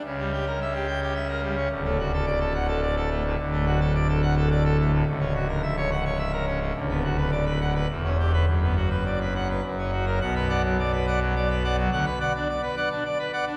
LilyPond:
<<
  \new Staff \with { instrumentName = "Pipe organ" } { \time 3/4 \key d \major \tempo 4 = 106 << { r4. g''16 r4 r16 | r4. fis''16 r4 r16 | \key b \minor r4. fis''16 r4 r16 | r4. fis''16 r4 r16 |
r4. fis''16 r4 b'16 | r4. fis''16 r4 ais'16 | fis''16 b'16 <d'' fis''>16 fis16 d''16 b'16 <d'' fis''>16 fis16 d''16 b'16 <d'' fis''>16 fis16 | fis''16 b'16 <d'' fis''>16 d'16 d''16 b'16 <d'' fis''>16 d'16 d''16 b'16 <d'' fis''>16 d'16 | } \\ { cis16 g16 g'16 ais'16 e''16 g'16 r16 g'16 e''16 ais'16 g16 cis'16 | d,16 a16 fis'16 a'16 d''16 a'16 r16 a'16 d''16 a'16 a16 a,16 | d,16 a16 fis'16 a'16 d''16 a'16 r16 a'16 d''16 a'16 a16 a,16 | cis,16 cis'16 fis'16 ais'16 e''16 cis''16 r16 cis''16 e''16 ais'16 cis'16 cis16 |
d,16 b16 fis'16 b'16 d''16 b'16 r16 b'16 e,16 cis'16 g'16 r16 | fis,16 b16 fis'16 b'16 d''16 b'16 r16 b'16 fis,16 cis'16 fis'16 r16 | b,2. | d16 r2 r8. | } >> }
  \new Staff \with { instrumentName = "Pipe organ" } { \clef bass \time 3/4 \key d \major cis,2. | d,,2. | \key b \minor d,,2. | cis,,2. |
d,,2 e,,4 | fis,,2 fis,,4 | b,,2. | d,16 r2 r8. | }
>>